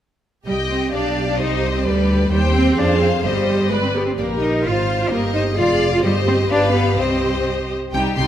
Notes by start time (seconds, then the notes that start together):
0.47 C2 G3 G4 D#5 G5
0.70 C4
0.93 B1 D4 G4 D5 F5
1.28 D4
1.39 C2 D#4 G4 C5 D#5
1.74 C4
1.85 D2 G3 G4 B4 D5
2.32 D#2 G3 G4 C5 G5
2.55 C4
2.77 F2 D4 G#4 C5 F5
3.01 C4
3.23 G1 G3 G4 C5 D#5
3.70 G#3 B4 D5
3.83 C4
3.94 B3 G4
4.06 C4
4.18 A#1 A#3 G4 A#4 D5
4.41 D#4 D#5
4.64 G#1 F4 C5 F5
4.99 F4
5.11 G1 A#3 G4 A#4 D#5
5.34 D#4 C5
5.57 F1 F4 G#4 D5 F5
5.92 F4
6.02 G1 G3 G4 C5 D#5
6.28 C4
6.50 G1 D4 G4 B4 F5
6.74 B3
6.97 C2 C4 G4 C5 D#5
7.93 C2 C3 G3 D#4 G4 G5
8.17 C2 C3 G3 D#4 G4 G5 C6